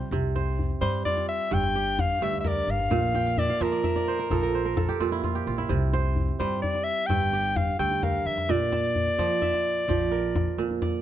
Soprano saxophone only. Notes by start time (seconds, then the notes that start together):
Already playing: C5
0.81 C5
1.05 D5
1.29 E5
1.53 G5
2.00 F5
2.24 E5
2.40 E5
2.48 D5
2.70 F5
3.39 D5
3.62 A#4
6.39 C5
6.62 D5
6.84 E5
7.07 G5
7.56 F5
7.79 G5
8.03 F5
8.26 E5
8.51 D5